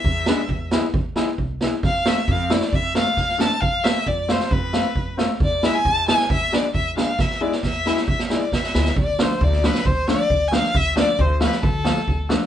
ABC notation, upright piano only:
X:1
M:4/4
L:1/16
Q:1/4=135
K:none
V:1 name="Upright piano"
z2 [^G,B,D] z3 [G,B,E] z3 [G,B,E] z3 [G,B,E] z | z2 [A,CF] z3 [A,CE] z3 [A,CF] z3 [A,CD] z | z2 [A,CF] z3 [A,CF] z3 [A,CF] z3 [A,CF] z | z2 [^G,B,E] z3 [G,B,E] z3 [G,B,D] z3 [G,B,D] z |
z2 [^G,B,E] z3 [G,B,E] z3 [G,B,E] z3 [G,B,E] z | z2 [F,A,D] z3 [F,A,D] z3 [F,A,D] z3 [F,A,D] z | z2 [F,A,D] z3 [F,A,F] z3 [F,A,F] z3 [F,A,D] z |]